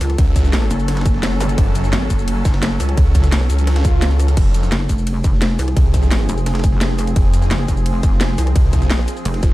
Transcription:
Already playing: synth drone F#3 C#4 A4
0.01 wobble bass C#2, cross-stick, snare, open hi-hat, ride, shaker
0.10 cross-stick, closed hi-hat
0.18 detuned saw bass C#2, kick, closed hi-hat, ride
0.36 kick, snare, closed hi-hat, ride, shaker
0.45 snare, shaker
0.53 snare, closed hi-hat, open hi-hat, ride
0.62 cross-stick, snare
0.71 wobble bass F#1, closed hi-hat, ride, shaker
0.79 ride, shaker
0.88 cross-stick, snare, closed hi-hat, ride
0.97 snare, closed hi-hat, ride
1.01 snare, ride
1.06 kick, closed hi-hat, ride, shaker
1.14 snare
1.23 snare, closed hi-hat, ride
1.32 snare
1.40 cross-stick, open hi-hat, ride, zap, shaker
1.49 closed hi-hat, shaker
1.58 detuned saw bass F#1, kick, closed hi-hat, ride
1.75 closed hi-hat, ride, shaker
1.84 snare, shaker
1.93 wobble bass G#1, snare, closed hi-hat, ride
2.02 cross-stick
2.10 wobble bass F#1, kick, closed hi-hat, ride, shaker
2.19 shaker
2.28 closed hi-hat, ride
2.45 wobble bass F#1, kick, snare, closed hi-hat, ride, shaker
2.54 snare, ride
2.63 snare, closed hi-hat, ride
2.71 snare
2.80 wobble bass C#2, cross-stick, snare, open hi-hat, ride, shaker
2.89 cross-stick, closed hi-hat
2.97 detuned saw bass C#2, kick, closed hi-hat, ride
3.15 kick, snare, closed hi-hat, ride, shaker
3.24 snare, closed hi-hat, shaker
3.32 snare, closed hi-hat, open hi-hat, ride
3.41 cross-stick, snare
3.50 detuned saw bass C#2, closed hi-hat, ride, shaker
3.59 closed hi-hat, ride, shaker
3.67 cross-stick, snare, closed hi-hat, ride, swell
3.76 snare, closed hi-hat, ride
3.85 detuned saw bass C#2, kick, closed hi-hat, ride, shaker
4.02 snare, closed hi-hat, ride
4.11 ride
4.20 cross-stick, open hi-hat, ride, shaker
4.28 closed hi-hat, ride, shaker
4.37 detuned saw bass F1, synth drone F3 C4 G#4, kick, closed hi-hat, ride, crash
4.54 closed hi-hat, ride, shaker
4.63 snare, shaker
4.72 wobble bass F#1, snare, closed hi-hat, ride
4.81 cross-stick
4.89 wobble bass F1, kick, closed hi-hat, ride, shaker
4.98 shaker
5.07 closed hi-hat, ride
5.24 wobble bass F1, kick, closed hi-hat, ride, shaker
5.33 snare
5.42 snare, closed hi-hat, ride
5.50 snare
5.59 wobble bass C2, cross-stick, snare, open hi-hat, ride, shaker
5.68 cross-stick, closed hi-hat
5.77 detuned saw bass C2, kick, closed hi-hat, ride
5.94 kick, snare, closed hi-hat, ride, shaker
6.03 snare, shaker
6.11 snare, closed hi-hat, open hi-hat, ride
6.20 cross-stick, snare
6.29 wobble bass F1, closed hi-hat, ride, shaker
6.38 ride, shaker
6.46 cross-stick, snare, closed hi-hat, ride
6.55 snare, closed hi-hat, ride
6.59 snare, ride
6.64 kick, closed hi-hat, ride, shaker
6.72 snare
6.81 snare, closed hi-hat, ride
6.90 snare
6.99 cross-stick, open hi-hat, ride, shaker
7.07 closed hi-hat, shaker
7.16 detuned saw bass F1, kick, closed hi-hat, ride
7.34 closed hi-hat, ride, shaker
7.42 snare, shaker
7.51 wobble bass F#1, snare, closed hi-hat, ride
7.60 cross-stick
7.68 wobble bass F1, kick, closed hi-hat, ride, shaker
7.77 shaker
7.86 closed hi-hat, ride
8.03 wobble bass F1, kick, closed hi-hat, ride, shaker
8.12 snare
8.21 snare, closed hi-hat, ride
8.29 snare
8.38 wobble bass C2, cross-stick, snare, open hi-hat, ride, shaker
8.47 cross-stick, closed hi-hat
8.56 detuned saw bass C2, kick, closed hi-hat, ride
8.73 kick, snare, closed hi-hat, ride, shaker
8.82 snare, shaker
8.90 snare, closed hi-hat, open hi-hat, ride
8.99 cross-stick, snare
9.08 closed hi-hat, ride, shaker
9.17 ride, shaker
9.25 wobble bass F1, cross-stick, closed hi-hat, ride
9.34 snare, closed hi-hat
9.43 detuned saw bass F1, kick, closed hi-hat, ride, shaker

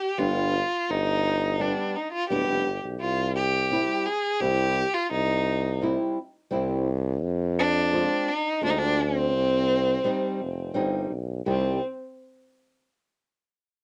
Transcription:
Already playing: violin G4
0.18 tuba G1, nylon-string guitar G3 B3 D4, violin F4
0.90 tuba G1, violin D#4
1.59 nylon-string guitar G3 B3 D4, violin D4
1.96 violin D#4
2.13 violin F4
2.30 tuba D1, nylon-string guitar G3 B3 D4, violin G4
2.48 tuba F1
2.66 tuba G1
2.84 tuba B1
3.00 tuba C2, violin F4
3.35 violin G4
3.71 nylon-string guitar G3 C4 E4
4.06 violin G#4
4.40 tuba C2, nylon-string guitar G3 C4 E4, violin G4
4.94 violin F4
5.11 tuba C2, violin D#4
5.81 nylon-string guitar G3 C4 E4
6.51 tuba C2, nylon-string guitar G3 C4 E4
7.22 tuba F2
7.59 violin D4
7.93 nylon-string guitar G#3 C4 F4
8.28 violin D#4
8.61 tuba D2, nylon-string guitar G#3 C4 F4, violin D4
8.70 violin D#4
8.78 violin D4
9.01 violin C4
9.34 tuba C2
10.04 nylon-string guitar G3 C4 D#4
10.41 tuba F1
10.74 tuba G1, nylon-string guitar G3 C4 D#4
11.10 tuba B1
11.46 tuba C2, nylon-string guitar G3 C4 D#4, violin C4

